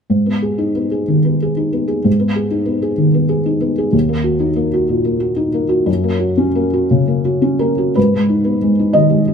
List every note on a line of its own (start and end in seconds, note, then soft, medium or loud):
0.10 2.02 G#2 soft
0.26 0.53 B3 soft
0.42 0.70 G#4 soft
0.58 0.86 D#4 soft
0.75 1.02 B3 soft
0.91 1.19 G#4 soft
1.08 1.35 D#3 soft
1.25 1.51 B3 soft
1.42 1.68 G#4 soft
1.57 1.83 D#4 soft
1.73 1.99 B3 soft
1.88 2.14 G#4 soft
2.04 3.88 G#2 soft
2.19 2.46 B3 soft
2.36 2.62 G#4 soft
2.51 2.77 D#4 soft
2.65 2.92 B3 soft
2.82 3.08 G#4 soft
2.98 3.23 D#3 soft
3.14 3.39 B3 soft
3.29 3.55 G#4 soft
3.46 3.71 D#4 soft
3.61 3.86 B3 soft
3.78 3.94 G#4 soft
3.93 5.83 D#2 soft
4.09 4.34 A#3 soft
4.24 4.50 F#4 soft
4.40 4.66 D#4 soft
4.56 4.82 A#3 soft
4.73 4.99 F#4 soft
4.89 5.15 A#2 soft
5.05 5.31 A#3 soft
5.20 5.47 F#4 soft
5.36 5.63 D#4 soft
5.54 5.81 A#3 soft
5.69 5.87 F#4 soft
5.86 7.92 F#2 soft
6.04 6.31 A#3 soft
6.20 6.48 F#4 soft
6.37 6.66 C#4 soft
6.55 6.84 A#3 soft
6.73 7.01 F#4 soft
6.91 7.19 C#3 soft
7.08 7.36 A#3 soft
7.25 7.54 F#4 soft
7.42 7.71 C#4 soft
7.59 7.89 A#3 soft
7.59 7.95 A#4 soft
7.78 7.96 F#4 soft
7.95 9.34 G#2 soft
7.95 8.95 B4 medium
8.14 8.40 G#3 soft
8.29 8.56 D#4 soft
8.44 8.72 B3 soft
8.62 8.88 G#3 soft
8.79 9.05 D#4 soft
8.93 9.21 D#3 soft
8.93 9.34 D#5 medium
9.10 9.34 G#3 soft
9.28 9.34 D#4 soft